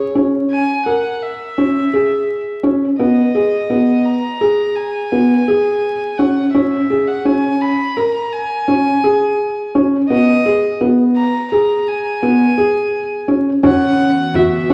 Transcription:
Already playing: C#5
0.15 C#4
0.51 G#5
0.86 A#4 F#5
1.22 E5
1.58 C#4
1.93 G#4
2.63 C#4
2.99 B3 D#5
3.35 G#4
3.70 B3
4.05 A#5
4.41 G#4
4.75 G#5
5.12 B3
5.48 G#4
6.18 C#4 F#5
6.53 C#4 E5
6.90 G#4
7.08 F#5
7.25 C#4 G#5
7.61 B5
7.97 A#4 A#5
8.33 G#5
8.68 C#4
9.04 G#4
9.75 C#4
10.09 B3 D#5
10.46 G#4
10.81 B3
11.16 A#5
11.52 G#4 A#5
11.89 G#5
12.23 B3
12.58 G#4
13.28 C#4
13.63 E3 B3 C#4 F#4 F#5, frame drum
13.99 frame drum
14.34 F#4 E5, frame drum
14.70 C#4 F#5, frame drum

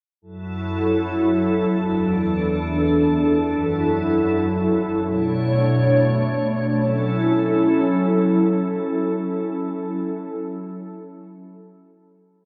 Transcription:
0.22 F#2 F#3 E4 A4
1.83 E2 E3 D4
3.44 F#2 F#3 E4
5.05 B2 A3 D4 C#5
6.66 F#3 C#4 E4 A4

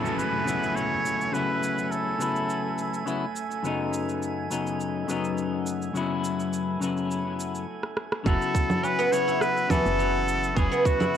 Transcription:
Already playing: C#3 F#3 A3 B3 E4 A4 G#5, downlifter
0.05 cabasa
0.18 B4, cabasa
0.45 C#3 F#3 B3 E4, cabasa
0.63 cabasa
0.75 C#5, cabasa
1.06 cabasa
1.21 cabasa
1.31 C#3 F#3 B3 B4, cabasa
1.35 E4
1.63 cabasa
1.78 cabasa
1.91 A4, cabasa
2.18 C#3 F#3 B3 E4, cabasa
2.36 cabasa
2.50 cabasa
2.78 cabasa
2.94 cabasa
3.06 C#3 F#3 B3 E4, cabasa
3.36 cabasa
3.51 cabasa
3.63 F#2 C#3 F#3 B3, cabasa
3.67 D#4
3.94 cabasa
4.09 cabasa
4.23 cabasa
4.50 F#2 C#3 F#3 B3 D#4, cabasa
4.67 cabasa
4.81 cabasa
5.07 F#2 C#3 F#3 B3 D#4, cabasa
5.24 cabasa
5.38 cabasa
5.67 cabasa
5.82 cabasa
5.93 F#2 C#3 F#3 B3, cabasa
5.97 E4
6.24 cabasa
6.40 cabasa
6.53 cabasa
6.80 F#2 C#3 F#3 B3 E4, cabasa
6.97 cabasa
7.11 cabasa
7.40 cabasa
7.55 cabasa
7.83 cross-stick
7.97 cross-stick
8.12 cross-stick
8.24 F#1 C#3 F#3 B3 A4, kick, cabasa
8.28 E4
8.42 cabasa
8.55 kick, cabasa
8.70 low conga, cabasa
8.83 C#4 B4, cabasa
8.99 B3, cabasa
9.12 C#3 F#3 B3 E4 F#4 C#5, cabasa
9.28 E4, cabasa
9.41 B4, cross-stick, cabasa
9.57 cabasa
9.69 C#3 E3 F#3 B3 E4 A4, kick, low conga, cabasa
9.86 F#1, cabasa
9.99 F#3, cabasa
10.28 cabasa
10.44 cabasa
10.55 F#1 C#3 F#3 B3 C#4 G#4, kick, cabasa
10.59 E4
10.72 B3, cabasa
10.85 F#4, kick, cabasa
11.00 E4, low conga, cabasa

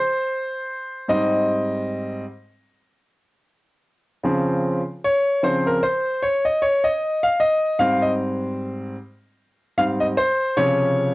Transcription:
Already playing: C5
1.08 G#2 G3 C4 D#5
4.23 C#3 F3 C4
5.04 C#5
5.43 C#3 F3 C4 C5
5.67 A#4
5.83 C5
6.23 C#5
6.45 D#5
6.62 C#5
6.84 D#5
7.23 F5
7.40 D#5
7.79 G#2 G3 C4 F5
8.02 D#5
9.77 G#2 G3 C4 F5
10.00 D#5
10.17 C5
10.57 C3 C#3 F3 C#5

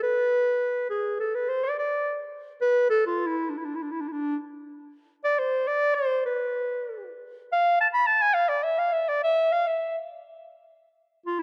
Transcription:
0.03 B4
0.90 G#4
1.20 A4
1.35 B4
1.49 C5
1.64 D5
1.79 D5
2.61 B4
2.90 A4
3.07 F4
3.27 E4
3.50 D4
3.58 E4
3.65 D4
3.76 E4
3.82 D4
3.92 E4
4.01 D4
4.08 D4 E4
5.24 D5
5.39 C5
5.68 D5
5.95 C5
6.26 B4
7.53 F5
7.81 A5
7.94 B5
8.06 A5
8.22 G#5
8.34 F5
8.49 D5
8.63 E5
8.79 F5
8.93 E5
9.09 D5
9.24 E5
9.52 F5
9.67 E5
11.26 F4
11.39 E4

